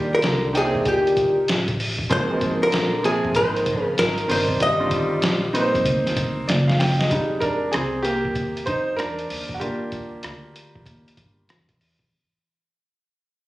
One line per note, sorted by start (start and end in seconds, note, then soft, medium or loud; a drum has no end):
0.00 0.41 D#3 medium
0.00 0.41 A#3 medium
0.00 0.41 D4 medium
0.00 0.45 G4 medium
0.00 0.16 D5 loud
0.12 0.52 D3 medium
0.12 0.57 A#4 medium
0.12 muted upright bass stroke soft
0.22 0.83 C2 medium
0.22 snare loud
0.22 closed hi-hat medium
0.53 0.84 C3 medium
0.53 1.52 A#3 medium
0.53 1.53 D4 medium
0.53 1.52 D#4 medium
0.53 1.53 G5 medium
0.53 closed hi-hat medium
0.57 0.88 G#4 medium
0.75 kick medium
0.85 1.34 D2 loud
0.85 1.45 A#2 medium
0.85 1.46 G4 medium
0.85 kick medium
0.85 closed hi-hat medium
1.07 closed hi-hat soft
1.17 kick medium
1.17 closed hi-hat medium
1.38 muted upright bass stroke soft
1.48 2.08 A1 medium
1.48 snare loud
1.48 closed hi-hat medium
1.68 kick medium
1.68 closed hi-hat soft
1.80 open hi-hat medium
1.99 kick medium
2.09 2.59 G#1 loud
2.09 2.58 D#3 medium
2.09 2.26 F3 medium
2.09 2.26 A#3 medium
2.09 2.26 C4 medium
2.09 2.26 G#4 medium
2.09 2.64 C5 medium
2.09 kick loud
2.09 closed hi-hat medium
2.29 2.90 F3 medium
2.29 2.91 A#3 medium
2.29 2.35 B3 medium
2.29 2.91 G#4 medium
2.37 2.94 C4 medium
2.41 kick medium
2.41 closed hi-hat medium
2.62 3.01 D3 medium
2.62 3.05 A#4 medium
2.62 muted upright bass stroke soft
2.72 3.33 A#1 medium
2.72 snare loud
2.72 closed hi-hat medium
3.03 3.33 C3 medium
3.03 4.02 F3 medium
3.03 4.02 A#3 medium
3.03 4.03 C4 medium
3.03 3.13 G4 medium
3.03 3.37 G#4 medium
3.03 closed hi-hat medium
3.11 4.06 G#4 medium
3.25 kick medium
3.35 3.84 G#1 medium
3.35 3.80 D#3 medium
3.35 3.85 C5 medium
3.35 kick loud
3.35 closed hi-hat medium
3.56 closed hi-hat soft
3.66 kick medium
3.66 closed hi-hat medium
3.80 3.94 C#3 medium
3.85 3.99 A#4 medium
3.85 muted upright bass stroke soft
3.97 4.28 G#1 medium
3.97 4.27 D#3 medium
3.97 4.31 A#4 loud
3.97 snare loud
3.97 closed hi-hat medium
4.18 closed hi-hat soft
4.28 5.08 G1 medium
4.28 4.68 D#3 medium
4.28 4.58 D#3 medium
4.28 4.68 C4 medium
4.28 4.68 D4 medium
4.28 4.68 A#4 medium
4.28 4.62 C5 medium
4.28 open hi-hat medium
4.49 kick medium
4.60 5.81 G3 medium
4.60 5.83 D#5 loud
4.60 kick loud
4.60 closed hi-hat medium
4.79 5.41 D3 medium
4.79 5.40 C4 medium
4.79 5.41 F4 medium
4.86 5.44 D#3 medium
4.91 kick medium
4.91 closed hi-hat medium
5.12 muted upright bass stroke soft
5.22 5.85 A#1 medium
5.22 snare loud
5.22 closed hi-hat medium
5.53 6.53 A#3 medium
5.53 6.53 C4 medium
5.53 6.52 D#4 medium
5.53 5.63 B4 medium
5.53 closed hi-hat medium
5.61 6.56 C5 loud
5.75 kick medium
5.75 closed hi-hat medium
5.85 6.34 D2 loud
5.85 kick loud
5.85 closed hi-hat medium
6.07 snare soft
6.07 closed hi-hat soft
6.17 kick medium
6.17 closed hi-hat medium
6.37 muted upright bass stroke soft
6.48 7.08 F#1 medium
6.48 6.67 D5 medium
6.48 snare medium
6.48 closed hi-hat medium
6.68 6.79 F5 medium
6.68 snare medium
6.79 6.98 G5 medium
6.79 snare medium
6.79 open hi-hat medium
6.99 7.29 D#5 medium
6.99 snare medium
7.10 7.70 F2 loud
7.10 7.55 G3 medium
7.10 7.55 G#3 soft
7.10 7.56 D#4 medium
7.10 kick loud
7.10 closed hi-hat medium
7.40 7.71 D4 medium
7.40 7.73 A#4 medium
7.40 kick medium
7.40 closed hi-hat medium
7.72 8.33 C2 medium
7.72 8.03 C4 medium
7.72 8.01 G#4 medium
7.72 cross-stick loud
7.72 closed hi-hat medium
8.03 8.63 A#3 medium
8.03 8.62 G4 loud
8.03 closed hi-hat medium
8.25 kick medium
8.35 8.65 D#2 medium
8.35 kick medium
8.35 closed hi-hat medium
8.57 closed hi-hat soft
8.66 8.97 F2 medium
8.66 8.97 D#4 medium
8.66 8.95 C5 medium
8.66 kick medium
8.66 closed hi-hat medium
8.97 9.28 E2 medium
8.97 9.52 D4 medium
8.97 9.56 A#4 medium
8.97 cross-stick loud
8.97 closed hi-hat medium
9.19 closed hi-hat soft
9.30 10.20 D#2 medium
9.30 open hi-hat medium
9.49 kick medium
9.54 9.60 F#4 medium
9.60 12.07 G3 soft
9.60 11.45 A#3 medium
9.60 12.07 D4 medium
9.60 12.06 F4 medium
9.60 11.44 G4 medium
9.60 kick medium
9.60 closed hi-hat medium
9.92 kick medium
9.92 closed hi-hat medium
10.23 10.83 D2 medium
10.23 cross-stick loud
10.23 closed hi-hat medium
10.56 closed hi-hat medium
10.75 kick medium
10.86 11.15 D#2 medium
10.86 kick medium
10.86 closed hi-hat medium
11.08 closed hi-hat soft
11.17 11.47 G1 medium
11.17 kick medium
11.17 closed hi-hat medium
11.49 12.08 E2 medium
11.49 cross-stick loud
11.49 closed hi-hat medium
11.69 kick medium
11.69 closed hi-hat soft
11.81 open hi-hat soft
11.99 kick medium